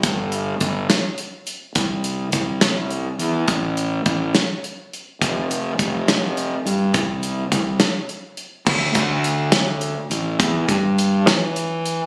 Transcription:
<<
  \new Staff \with { instrumentName = "Fingered electric bass" } { \clef bass \time 6/8 \key d \dorian \tempo 4. = 70 g,,4 g,,8 r4. | c,4 c,4. e,8 | a,,4 a,,8 r4. | f,,4 f,,4. g,8 |
c,4 c,8 r4. | d,8 d,2 a,,8 | e,8 g,4 e4. | }
  \new DrumStaff \with { instrumentName = "Drums" } \drummode { \time 6/8 <hh bd>8 hh8 <hh bd>8 <hh sn>8 hh8 hh8 | <hh bd>8 hh8 <hh bd>8 <hh sn>8 hh8 hh8 | <hh bd>8 hh8 <hh bd>8 <hh sn>8 hh8 hh8 | <hh bd>8 hh8 <hh bd>8 <hh sn>8 hh8 hh8 |
<hh bd>8 hh8 <hh bd>8 <hh sn>8 hh8 hh8 | <cymc bd>8 <hh bd>8 hh8 <hh sn>8 hh8 hh8 | <hh bd>8 <hh bd>8 hh8 <hh sn>8 hh8 hh8 | }
>>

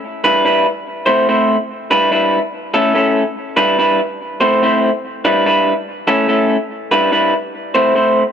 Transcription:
\new Staff \with { instrumentName = "Clean electric guitar" } { \time 4/4 \key a \dorian \tempo 4 = 144 r8 <g d' e' b'>8 <g d' e' b'>8 r4 <a c' e' c''>8 <a c' e' c''>8 r8 | r8 <g d' e' b'>8 <g d' e' b'>8 r4 <a cis' e' a'>8 <a cis' e' a'>8 r8 | r8 <g d' e' b'>8 <g d' e' b'>8 r4 <a c' e' c''>8 <a c' e' c''>8 r8 | r8 <g d' e' b'>8 <g d' e' b'>8 r4 <a cis' e' a'>8 <a cis' e' a'>8 r8 |
r8 <g d' e' b'>8 <g d' e' b'>8 r4 <a c' e' c''>8 <a c' e' c''>8 r8 | }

